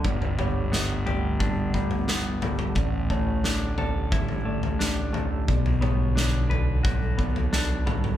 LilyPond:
<<
  \new Staff \with { instrumentName = "Felt piano" } { \time 4/4 \key a \mixolydian \tempo 4 = 88 d''8 cis''4 d''4 d''4 a'8 | d''8 cis''4 d''4 d''4 a'8 | d''8 cis''4 d''4 d''4 a'8 | }
  \new Staff \with { instrumentName = "Ambient pad" } { \time 4/4 \key a \mixolydian << { <d b fis''>1 | <a g'>1 | <b a'>1 | } \\ { a1 | d1~ | d1 | } >> }
  \new Staff \with { instrumentName = "Clean electric guitar" } { \time 4/4 \key a \mixolydian g,8 g8 b8 g'8 d'8 g8 b8 g8 | a,8 a8 d'8 a'8 e'8 a8 d'8 a8 | b,8 b8 d'8 b'8 fis'8 b8 d'8 b8 | }
  \new Staff \with { instrumentName = "Fingered electric bass" } { \clef bass \time 4/4 \key a \mixolydian g,,1 | a,,1 | b,,1 | }
  \new DrumStaff \with { instrumentName = "Drums" } \drummode { \time 4/4 <bd tomfh>16 tomfh16 <tomfh toml>8 sn8 tomfh8 <bd tomfh toml>8 <bd tomfh>16 tomfh16 sn8 <tomfh toml>16 toml16 | <bd tomfh>8 <bd tomfh>8 sn8 tomfh8 <bd tomfh toml>16 tomfh8 tomfh16 sn8 tomfh8 | <bd tomfh>16 tomfh16 <tomfh toml>8 sn8 tomfh8 <bd tomfh toml>8 <bd tomfh>16 tomfh16 sn8 <tomfh toml>16 toml16 | }
>>